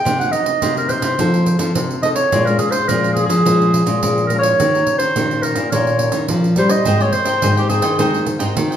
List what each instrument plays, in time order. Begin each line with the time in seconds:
Already playing: clarinet G5
0.05 nylon-string guitar C3 F#3 A#3 D#4, pandeiro
0.19 nylon-string guitar F#3 A#3 D#4, clarinet F#5, pandeiro
0.32 nylon-string guitar F#3 A#3 D#4, clarinet D#5, pandeiro
0.46 pandeiro
0.62 nylon-string guitar C3 F#3 A#3 D#4, pandeiro
0.77 clarinet A#4, pandeiro
0.89 clarinet C5, pandeiro
1.02 nylon-string guitar C3, pandeiro
1.19 nylon-string guitar F3 C4 D#4 A4, pandeiro
1.34 pandeiro
1.46 pandeiro
1.59 nylon-string guitar F3 C4 D#4 A4, pandeiro
1.75 nylon-string guitar C3, pandeiro
1.91 pandeiro
2.02 nylon-string guitar C4 D#4 A4, clarinet D#5, pandeiro
2.15 clarinet C#5, pandeiro
2.32 nylon-string guitar A#2 G#3 C#4 F4, pandeiro
2.46 nylon-string guitar G#3 C#4 F4, clarinet A#4, pandeiro
2.59 clarinet G#4, pandeiro
2.71 clarinet C5, pandeiro
2.88 nylon-string guitar A#2 F3 G#3 C#4 F4, clarinet A#4, pandeiro
3.04 pandeiro
3.14 clarinet G#4, pandeiro
3.26 nylon-string guitar F3, clarinet G#4, pandeiro
3.46 nylon-string guitar A#2 F3 G#3 C#4 F4, pandeiro
3.62 pandeiro
3.74 pandeiro
3.86 nylon-string guitar A#2 G#3 C#4 F4, pandeiro
4.03 nylon-string guitar A#2 F3, pandeiro
4.18 pandeiro
4.27 nylon-string guitar G#3, clarinet A#4, pandeiro
4.31 nylon-string guitar C#4 F4
4.39 clarinet C#5
4.43 pandeiro
4.60 nylon-string guitar D#3 C#4 G4 A#4, pandeiro
4.75 nylon-string guitar C#4 G4 A#4, pandeiro
4.87 pandeiro
4.98 clarinet C5, pandeiro
5.16 nylon-string guitar A#2 D#3 C#4 G4 A#4, pandeiro
5.31 pandeiro
5.42 clarinet A#4, pandeiro
5.56 nylon-string guitar A#2, pandeiro
5.72 nylon-string guitar A#2 D#3 C#4 G4 A#4, clarinet C#5, pandeiro
5.87 pandeiro
5.99 pandeiro
6.12 nylon-string guitar D#3 C#4 G4 A#4, pandeiro
6.28 nylon-string guitar A#2 F3, pandeiro
6.44 pandeiro
6.56 nylon-string guitar G3 C#4 G4 A#4, clarinet C5, pandeiro
6.69 clarinet D#5, pandeiro
6.85 nylon-string guitar G#2 G#3 C4 G4 A#4, cavaquinho G#4 C5 D#5 G5, pandeiro
7.00 cavaquinho C5 D#5 G5, clarinet C#5, pandeiro
7.13 clarinet C5, muted cavaquinho stroke, pandeiro
7.25 nylon-string guitar C4 G4 A#4, cavaquinho C5 D#5 G5, pandeiro
7.42 nylon-string guitar G#2 D#3, cavaquinho G#4 C5 D#5 G5, pandeiro
7.57 clarinet G4, cavaquinho C5 D#5 G5, pandeiro
7.69 nylon-string guitar C4 G4 A#4, cavaquinho G#4 C5 D#5 G5, clarinet G#4, pandeiro
7.82 nylon-string guitar D#3, cavaquinho C5 D#5 G5, pandeiro
7.98 nylon-string guitar D#3 G#3 C4 G4 A#4, cavaquinho G#4 C5 D#5 G5, pandeiro
8.14 pandeiro
8.26 muted cavaquinho stroke, pandeiro
8.38 nylon-string guitar G#2 C4 G4 A#4, cavaquinho C5 D#5 G5, pandeiro
8.56 nylon-string guitar D#3, pandeiro
8.71 cavaquinho C5 D#5 G5, pandeiro